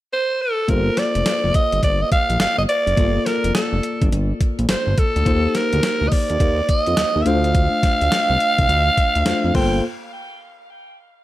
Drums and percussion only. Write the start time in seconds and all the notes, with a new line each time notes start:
0.69 kick, closed hi-hat
0.97 snare, closed hi-hat
1.15 closed hi-hat
1.26 snare, closed hi-hat
1.54 kick, closed hi-hat
1.72 closed hi-hat
1.83 kick, closed hi-hat
2.12 kick, closed hi-hat
2.30 closed hi-hat
2.40 snare, closed hi-hat
2.69 closed hi-hat
2.87 closed hi-hat
2.97 kick, closed hi-hat
3.26 snare, closed hi-hat
3.44 closed hi-hat
3.55 snare, closed hi-hat
3.83 closed hi-hat
4.02 kick, closed hi-hat
4.12 closed hi-hat
4.41 kick, closed hi-hat
4.59 closed hi-hat
4.69 snare, closed hi-hat
4.98 kick, closed hi-hat
5.16 closed hi-hat
5.26 kick, closed hi-hat
5.55 snare, closed hi-hat
5.73 closed hi-hat
5.83 snare, closed hi-hat
6.12 kick, open hi-hat
6.30 closed hi-hat
6.40 kick, closed hi-hat
6.69 kick, closed hi-hat
6.87 closed hi-hat
6.97 snare, closed hi-hat
7.26 closed hi-hat
7.44 closed hi-hat
7.55 kick, closed hi-hat
7.83 kick, snare, closed hi-hat
8.01 closed hi-hat
8.12 snare, closed hi-hat
8.40 closed hi-hat
8.58 kick, closed hi-hat
8.69 closed hi-hat
8.98 kick, closed hi-hat
9.15 closed hi-hat
9.26 snare, closed hi-hat
9.55 kick, crash